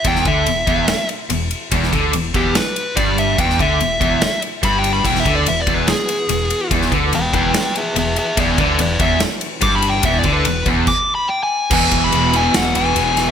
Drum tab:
CC |----------------|----------------|----------------|x---------------|
RD |x-x-x-x-x-x-x-x-|x-x-x-x-x-x-x-x-|x-x-x-x-x-x-x-x-|--x-x-x-x-x-x-x-|
SD |-o------o-------|-o------o-------|-o------o-------|-o------o-------|
BD |o-o---o---------|o-o---o-----o---|o-o---o-----o---|o-o---o---------|

CC |----------------|----------------|--------x-------|x---------------|
RD |x-x-x-x-x-x-x-x-|x-x-x-x-x-x-x-x-|x-x-x-x---------|--x-x-x-x-x-x-x-|
SD |-o------o-------|--------o-------|----------------|--------o-----o-|
BD |o-o---o---------|o-o---o-----o---|o-o---o-o-------|o-o-------------|